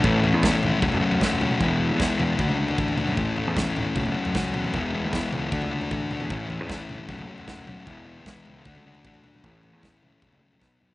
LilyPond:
<<
  \new Staff \with { instrumentName = "Distorted electric guitar" } { \time 4/4 \key a \major \tempo 4 = 153 <a, e a cis' e'>8 <a cis' e'>8 <a, e a cis' e'>4 <fis a cis' fis'>8 <a cis' fis'>8 <fis a cis' fis'>8 <a cis' fis'>8 | <e gis b e'>8 <gis b e'>8 <e gis b e'>4 <d a d' fis'>8 <a d' fis'>8 <d a d' fis'>8 <a d' fis'>8 | <a, e a cis' e'>8 <a cis' e'>8 <a, e a cis' e'>4 <fis a cis' fis'>8 <a cis' fis'>8 <fis a cis' fis'>8 <a cis' fis'>8 | <e gis b e'>8 <gis b e'>8 <e gis b e'>4 <d a d' fis'>8 <a d' fis'>8 <d a d' fis'>8 <a d' fis'>8 |
<a, e a cis' e'>8 <a cis' e'>8 <a, e a cis' e'>4 <fis a cis' fis'>8 <a cis' fis'>8 <fis a cis' fis'>8 <a cis' fis'>8 | <e gis b e'>8 <gis b e'>8 <e gis b e'>4 <d a d' fis'>8 <a d' fis'>8 <d a d' fis'>8 <a d' fis'>8 | <a, e a cis' e'>8 <a cis' e'>8 <a, e a cis' e'>4 <fis, cis fis a cis'>8 <fis a cis'>8 <b, fis b dis'>8 <fis b dis'>8 | }
  \new Staff \with { instrumentName = "Fingered electric bass" } { \clef bass \time 4/4 \key a \major a,,8. e,8 r16 gis,,16 r16 fis,,16 fis,,16 r16 fis,8. cis,16 r16 | e,,8. e,8 r16 e,8 d,16 cis,8 r16 a,,8 r16 fis,16 | a,,8. e,8 r16 gis,,16 r16 fis,,16 fis,,16 r16 fis,16 cis,8 e,8 | e,,8. e,8 r16 cis,8 d,16 cis,8 r16 a,,8 r16 e,16 |
a,,8. e,8 r16 g,,16 r16 fis,,16 fis,,16 r16 fis,8. b,,16 r16 | e,,8. e,8 r16 cis,8 d,16 cis,8 r16 a,,8 r16 b,,16 | a,,8. e,8 r16 cis,16 r16 fis,,16 fis,,16 r16 ais,,16 b,,8 fis,16 r16 | }
  \new DrumStaff \with { instrumentName = "Drums" } \drummode { \time 4/4 <bd tomfh>8 tomfh8 <bd sn tomfh>8 <tomfh toml>8 <bd tomfh toml>16 tomfh8 tomfh16 <bd sn>16 tomfh16 <tomfh toml>16 toml16 | <bd tomfh>4 <bd sn tomfh>8 <tomfh toml>8 <bd tomfh>16 tomfh8 tomfh16 bd16 tomfh16 <tomfh toml>16 toml16 | <bd tomfh>8 tomfh8 <bd sn tomfh>8 <tomfh toml>8 <bd tomfh toml>16 tomfh8 tomfh16 <bd sn>16 tomfh16 <tomfh toml>16 toml16 | <bd tomfh>4 <bd sn tomfh>8 <tomfh toml>8 <bd tomfh>16 tomfh8 tomfh16 bd16 tomfh16 <tomfh toml>16 toml16 |
<bd tomfh>8 tomfh8 <bd sn tomfh>8 <tomfh toml>8 <bd tomfh toml>16 tomfh8 tomfh16 <bd sn>16 tomfh16 <tomfh toml>16 toml16 | <bd tomfh>4 <bd sn tomfh>8 <tomfh toml>8 <bd tomfh>16 tomfh8 tomfh16 bd16 tomfh16 <tomfh toml>16 toml16 | <bd tomfh>8 tomfh8 <bd sn tomfh>8 <tomfh toml>8 <bd tomfh toml>16 tomfh8 tomfh16 <bd sn>8 tomfh8 | }
>>